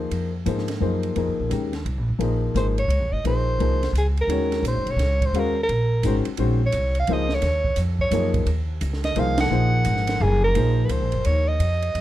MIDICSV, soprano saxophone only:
0, 0, Header, 1, 2, 480
1, 0, Start_track
1, 0, Tempo, 347826
1, 164, Time_signature, 3, 2, 24, 8
1, 16571, End_track
2, 0, Start_track
2, 0, Title_t, "Soprano saxophone"
2, 0, Program_c, 0, 64
2, 3545, Note_on_c, 0, 72, 73
2, 3679, Note_off_c, 0, 72, 0
2, 3847, Note_on_c, 0, 73, 83
2, 4313, Note_on_c, 0, 75, 84
2, 4333, Note_off_c, 0, 73, 0
2, 4487, Note_off_c, 0, 75, 0
2, 4510, Note_on_c, 0, 72, 99
2, 5405, Note_off_c, 0, 72, 0
2, 5490, Note_on_c, 0, 68, 65
2, 5619, Note_off_c, 0, 68, 0
2, 5808, Note_on_c, 0, 70, 70
2, 6391, Note_off_c, 0, 70, 0
2, 6453, Note_on_c, 0, 72, 84
2, 6772, Note_on_c, 0, 73, 94
2, 6793, Note_off_c, 0, 72, 0
2, 7251, Note_on_c, 0, 72, 83
2, 7272, Note_off_c, 0, 73, 0
2, 7441, Note_on_c, 0, 70, 97
2, 7462, Note_off_c, 0, 72, 0
2, 7712, Note_off_c, 0, 70, 0
2, 7771, Note_on_c, 0, 70, 85
2, 8627, Note_off_c, 0, 70, 0
2, 9191, Note_on_c, 0, 73, 82
2, 9602, Note_off_c, 0, 73, 0
2, 9650, Note_on_c, 0, 77, 90
2, 9836, Note_on_c, 0, 75, 82
2, 9857, Note_off_c, 0, 77, 0
2, 10138, Note_on_c, 0, 73, 85
2, 10159, Note_off_c, 0, 75, 0
2, 10758, Note_off_c, 0, 73, 0
2, 11051, Note_on_c, 0, 73, 76
2, 11489, Note_off_c, 0, 73, 0
2, 12483, Note_on_c, 0, 75, 88
2, 12684, Note_on_c, 0, 77, 96
2, 12705, Note_off_c, 0, 75, 0
2, 12967, Note_off_c, 0, 77, 0
2, 12975, Note_on_c, 0, 78, 102
2, 14109, Note_on_c, 0, 68, 88
2, 14130, Note_off_c, 0, 78, 0
2, 14398, Note_off_c, 0, 68, 0
2, 14406, Note_on_c, 0, 70, 86
2, 14970, Note_on_c, 0, 71, 58
2, 14991, Note_off_c, 0, 70, 0
2, 15053, Note_on_c, 0, 72, 84
2, 15074, Note_off_c, 0, 71, 0
2, 15533, Note_on_c, 0, 73, 91
2, 15554, Note_off_c, 0, 72, 0
2, 15840, Note_on_c, 0, 75, 91
2, 15861, Note_off_c, 0, 73, 0
2, 16571, Note_off_c, 0, 75, 0
2, 16571, End_track
0, 0, End_of_file